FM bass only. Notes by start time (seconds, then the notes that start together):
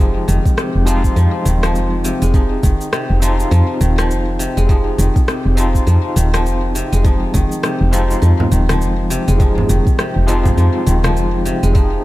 Already playing: F1
0.28 F1
0.75 F1
1.17 F2
1.46 D#1
1.75 F1
2.22 F1
2.63 F1
3.10 F1
3.52 F2
3.81 D#1
4.11 F1
4.57 F1
4.99 F1
5.46 F1
5.87 F2
6.16 D#1
6.46 F1
6.93 F1
7.34 F1
7.81 F1
8.23 F2
8.52 D#1
8.81 F1
9.28 F1
9.70 F1
10.16 F1
10.58 F2
10.87 D#1
11.16 F1
11.63 F1